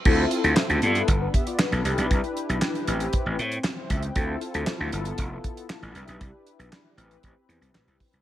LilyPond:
<<
  \new Staff \with { instrumentName = "Analog polysynth" } { \time 4/4 \key d \dorian \tempo 4 = 117 << { r2 a'16 <d' b'>16 <g' e''>16 <f' d''>16 <d' b'>16 a'8 r16 | r2. r16 <e' c''>16 <g' e''>16 <b' g''>16~ | <b' g''>16 r2. r8. | r1 | } \\ { <c' e' f' a'>4. <b e' f' a'>2 <d' e' g' b'>8~ | <d' e' g' b'>4. <c' e' g' b'>2~ <c' e' g' b'>8 | <c' e' f' a'>4. <b e' f' a'>2 <d' e' g' b'>8~ | <d' e' g' b'>4. <c' e' g' b'>2~ <c' e' g' b'>8 | } >> }
  \new Staff \with { instrumentName = "Slap bass" } { \clef bass \time 4/4 \key d \dorian d,8 r16 d,16 r16 d,16 g,8 g,,8 r8. b,,16 c,16 b,,16 | c,16 r8 b,,16 r8 a,,8 r16 a,,16 a,8 r8 cis,8 | d,8 r16 d,16 r16 d,16 g,,8 f,,8 r8. a,,16 c,16 b,,16 | c,16 r8 b,,16 r8 a,,8 a,,16 r16 e,16 c,16 a,,16 c,16 r16 c,16 | }
  \new DrumStaff \with { instrumentName = "Drums" } \drummode { \time 4/4 <cymc bd>8 hh16 hh16 <hc sn>16 hh16 hh16 hh16 <hh bd>8 <hh bd>16 hh16 <hc sn>16 hh16 hh16 hh16 | <hh bd>16 hh16 hh16 hh16 <hc sn>16 hh16 hh16 hh16 <hh bd>8 hh16 hh16 <hc sn>8 <hh bd>16 hh16 | <hh bd>8 hh16 hh16 <hc sn>8 hh16 hh16 <hh bd>8 <hh bd>16 hh16 <hc sn>16 hh16 hh16 hh16 | <hh bd>8 hh16 hh16 <hc sn>8 hh16 hh16 <hh bd>8 hh16 hh16 <hc sn>16 hh16 <hho bd>16 hh16 | }
>>